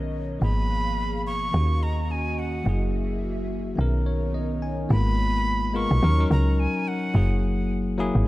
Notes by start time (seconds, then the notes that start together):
Already playing: B1 B2 D#3 B3 C#4 A#4 C#5 D#5
0.39 G#1 F3 A#3 B3 G#4 F5 B5
0.44 G#4
1.27 C#6
1.52 D#2 D#3 A#3 C#4 F#4 D#5
1.57 F#4
1.83 A#5
2.11 G#5
2.39 F#5
2.64 F#1 F#3 A#3 E4 G#4 E5
2.69 G#4
3.76 B1 D#3 B3 C#4 D#4 A#4 C#5
3.81 A#4
4.06 C#5
4.34 D#5
4.62 G#5
4.89 G#1 G#3 A#3 B3 F4 B5
5.73 G#3 B3 F4 A#4 C#6
5.91 B1
6.01 D#2 F#3 C#4 D#4 A#4
6.18 F#3 C#4 D#4 A#4
6.31 C#2 A#5
6.60 G#5
6.88 F#5
7.14 F#1 F#3 A#3 E4 G#4
7.98 F#3 A#3 E4 G#4
8.15 G#1